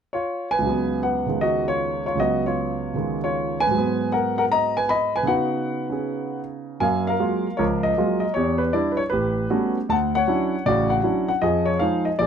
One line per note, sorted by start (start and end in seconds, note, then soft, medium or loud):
0.13 0.49 F4 medium
0.13 0.48 C#5 medium
0.51 0.99 B4 medium
0.51 0.98 G#5 medium
0.59 2.14 C#2 soft
0.59 1.25 C#3 soft
0.65 2.17 F#3 soft
0.65 2.19 B3 medium
1.03 1.39 B4 soft
1.03 1.42 F#5 medium
1.26 2.15 C#3 soft
1.26 2.17 D#3 soft
1.26 2.18 G#3 soft
1.41 1.65 F#4 medium
1.41 1.64 D#5 medium
1.68 2.03 F4 soft
1.68 2.03 C#5 medium
2.06 2.18 F4 medium
2.06 2.17 C#5 medium
2.15 3.70 C#2 soft
2.15 2.93 C#3 soft
2.15 3.69 F#3 soft
2.20 3.73 B3 soft
2.20 2.42 F#4 medium
2.20 2.42 D#5 medium
2.46 3.18 F4 medium
2.46 3.18 C#5 medium
2.94 3.71 C#3 soft
2.94 3.72 D#3 soft
2.94 3.73 G#3 soft
3.24 3.58 F4 medium
3.24 3.58 C#5 medium
3.60 4.08 B4 medium
3.60 4.13 G#5 loud
3.67 5.23 G#2 soft
3.71 5.25 F#3 soft
3.71 5.27 G#3 soft
3.78 5.23 B3 medium
4.12 4.36 A#4 medium
4.12 4.35 F#5 medium
4.38 4.44 A#4 medium
4.38 4.43 F#5 medium
4.52 4.74 D#5 medium
4.52 4.76 A#5 medium
4.77 4.88 B4 medium
4.77 4.89 G#5 medium
4.89 5.13 D#5 medium
4.89 5.12 B5 medium
5.16 5.27 B4 medium
5.16 5.26 G#5 medium
5.23 6.79 C#3 soft
5.23 6.79 B3 soft
5.23 6.81 D#4 soft
5.27 6.81 F#4 soft
5.27 6.39 B4 medium
5.27 6.38 F#5 medium
5.89 6.80 C#4 soft
5.89 6.81 G#4 soft
6.80 7.14 F#2 medium
6.80 7.13 A#3 medium
6.80 7.06 F5 medium
6.80 7.04 G#5 medium
7.07 7.57 A#4 medium
7.07 7.59 F5 medium
7.19 7.46 F#3 medium
7.19 7.46 G#3 soft
7.19 7.46 A#3 soft
7.19 7.46 F4 medium
7.57 7.91 C#2 medium
7.57 7.91 F3 medium
7.57 8.31 A#4 medium
7.57 7.63 C#5 medium
7.83 8.19 D#5 medium
7.98 8.23 F#3 medium
7.98 8.23 G#3 soft
7.98 8.23 A#3 soft
7.98 8.24 F4 medium
8.20 8.33 D#5 medium
8.34 8.68 E2 medium
8.34 9.08 G4 medium
8.34 8.60 C#5 medium
8.58 8.72 B4 medium
8.73 9.00 G3 medium
8.73 9.00 D4 soft
8.73 9.00 E4 medium
8.73 8.91 D5 medium
8.92 8.98 B4 medium
8.97 9.02 C#5 medium
9.10 9.45 A1 medium
9.10 9.85 G4 medium
9.10 9.70 B4 medium
9.50 9.77 G3 medium
9.50 9.76 A3 soft
9.50 9.77 B3 soft
9.50 9.77 C#4 soft
9.50 9.77 F#4 medium
9.89 10.22 D2 medium
9.89 10.14 F#5 medium
9.89 9.95 A5 medium
10.15 10.88 C#5 medium
10.15 10.62 F#5 medium
10.27 10.54 F#3 soft
10.27 10.54 C#4 soft
10.27 10.54 D4 soft
10.27 10.54 E4 medium
10.66 10.99 A1 medium
10.66 10.99 C#3 medium
10.66 11.39 F#4 medium
10.66 10.92 D5 medium
10.90 11.27 F#5 medium
11.03 11.30 F#3 soft
11.03 11.30 C#4 soft
11.03 11.30 D4 soft
11.03 11.30 E4 medium
11.28 11.42 F#5 medium
11.42 11.75 F2 medium
11.42 11.75 F3 medium
11.42 12.16 G#4 medium
11.42 11.68 D#5 medium
11.66 11.80 C#5 medium
11.79 12.07 F3 medium
11.79 12.07 G#3 soft
11.79 12.07 D#4 medium
11.79 12.04 F5 medium
12.05 12.10 D#5 medium
12.19 12.27 A#1 medium
12.19 12.27 G#4 medium
12.19 12.27 D5 medium